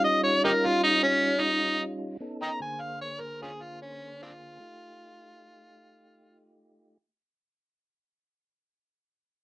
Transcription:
Already playing: tonewheel organ G3 C#4 D#4 F4
0.04 harmonica D#5
0.23 harmonica C#5
0.44 harmonica D#4 G4 A#4
0.65 harmonica F4
0.83 harmonica D#4
1.03 harmonica C#4
1.41 harmonica D#4
2.21 tonewheel organ B3 C#4 D#4 A4
2.42 harmonica D#5 G5 A#5
2.60 tonewheel organ D3 A#3 G#4 C5, harmonica G#5
2.81 harmonica F5
3.01 harmonica C#5
3.21 harmonica A#4
3.42 harmonica C#4 F4 G#4
3.62 harmonica F4
3.82 harmonica C#4
4.23 harmonica C4 D4 F4
4.60 tonewheel organ A3 D#4 F4 G4

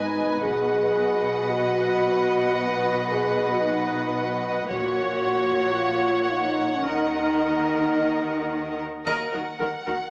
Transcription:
Already playing: double bass section G#1, cello section G#2, french horn section D#4, viola section B4, violin section D#5 G#5
0.42 double bass section B1, cello section B2, french horn section G#4, viola section B4, violin section D#5 F#5, taiko
1.50 french horn section F#4
2.55 french horn section B4
3.09 french horn section G#4
3.50 french horn section F#4
3.61 french horn section D#4
4.70 double bass section A#1, cello section A#2, french horn section F#4, violin section C#5 F#5, viola section C#5, taiko
5.51 taiko
5.75 french horn section F4
6.31 french horn section D#4
6.75 french horn section C#4
6.85 double bass section D#2, cello section D#3, french horn section D#4, viola section A#4, violin section D#5
9.06 double bass section D#2, cello section D#3, french horn section F#3 A#3, viola section A#4, violin section D#5 F#5, taiko, triangle
9.32 double bass section D#2, cello section D#3, violin section F#4, viola section A#4
9.60 double bass section D#2, cello section D#3, viola section A#4, violin section A#4
9.87 double bass section D#2, cello section D#3, violin section F#4, viola section A#4, taiko

